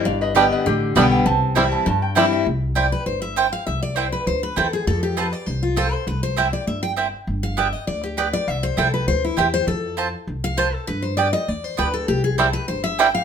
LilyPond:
<<
  \new Staff \with { instrumentName = "Resonator guitar played with a steel bar" } { \time 4/4 \key c \major \tempo 4 = 200 <d'' f''>8 <b' ees''>8 <b' ees''>8 <b' ees''>8 g'4 r8 g''8 | a''4. a''8 a''8 g''8 e''8 e''8 | r1 | r1 |
r1 | r1 | r1 | r1 |
r1 | r1 | r1 | }
  \new Staff \with { instrumentName = "Steel-string acoustic guitar" } { \time 4/4 \key c \major << { r4 <d g b g'>4 r4 <d g b g'>4 | r4 <e g c' e'>4 r4 <e g c' e'>4 | r4 d''8 b'8 c''8 e''8 g''8 f''8 | e''8 d''8 c''8 b'8 c''8 b'8 a'8 aes'8 |
a'8 g'8 b'8 d''8 c''8 f'8 a'8 c''8 | b'8 c''8 e''8 d''8 e''8 g''8 r4 | r8 f''8 e''8 ees''8 d''8 g'8 b'8 d''8 | e''8 c''8 a'8 b'8 c''8 e'8 g'8 c''8 |
a'4 r4. f''8 c''8 a'8 | b'8 c''8 d''8 ees''8 d''8 c''8 b'8 a'8 | g'8 aes'8 a'8 b'8 c''8 e''8 g''8 f''8 | } \\ { g,2 d2 | c2 g,2 | r1 | r1 |
r1 | r1 | r1 | r1 |
r1 | r1 | r1 | } >> }
  \new Staff \with { instrumentName = "Mandolin" } { \time 4/4 \key c \major r4 <b g' d'' g''>8 r4. <b g' d'' g''>8 r8 | r4 <c' e' c'' g''>8 r4. <c' e' c'' g''>8 r8 | r4 <c' e' c'' g''>8 r4. <c' e' c'' g''>8 r8 | r4 <c' e' c'' g''>8 r4. <c' e' c'' g''>8 r8 |
r4 <c' f' c'' a''>8 r4. <c' f' c'' a''>8 r8 | r4 <c' e' c'' g''>8 r4. <c' e' c'' g''>8 r8 | r4 <b g' d'' g''>8 r4. <b g' d'' g''>8 r8 | r4 <c' e' c'' g''>8 r4. <c' e' c'' g''>8 r8 |
r4 <c' f' c'' a''>8 r4. <c' f' c'' a''>8 r8 | r4 <b g' d'' g''>8 r4. <b g' d'' g''>8 r8 | r4 <c' e' c'' g''>8 r4. <c' e' c'' g''>8 r8 | }
  \new Staff \with { instrumentName = "Five-string banjo" } { \time 4/4 \key c \major r4 <g b d'>8 r4. <g b d'>8 r8 | r4 <g c' e'>8 r4. <g c' e'>8 r8 | r1 | r1 |
r1 | r1 | r1 | r1 |
r1 | r1 | r4 <g c' e'>8 r4. <g c' e'>8 r8 | }
  \new Staff \with { instrumentName = "Upright bass" } { \clef bass \time 4/4 \key c \major g,,2 a,,4 b,,4 | c,2 g,2 | c,2 g,,2 | c,2 d,4 e,4 |
f,2 c,2 | c,2 g,,2 | g,,2 d,2 | c,4 c,4 d,4 e,4 |
f,2 c,2 | g,2 e,4 d,4 | c,2 g,,2 | }
>>